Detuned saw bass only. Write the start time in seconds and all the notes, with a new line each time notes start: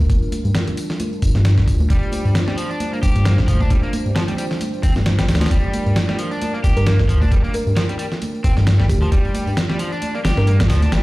0.09 G1
0.45 G2
1.22 G1
1.35 G2
1.57 G1
1.67 D2
1.90 G1
2.25 G2
3.03 G1
3.15 G2
3.38 G1
3.48 D2
3.70 G1
4.06 G2
4.83 G1
4.96 G2
5.18 G1
5.28 D2
5.51 G1
5.86 G2
6.64 G1
6.76 G2
6.99 G1
7.09 D2
7.31 G1
7.67 G2
8.44 G1
8.57 G2
8.79 G1
8.89 D2
9.12 G1
9.47 G2
10.24 G1
10.37 G2
10.60 G1
10.70 D2
10.92 G1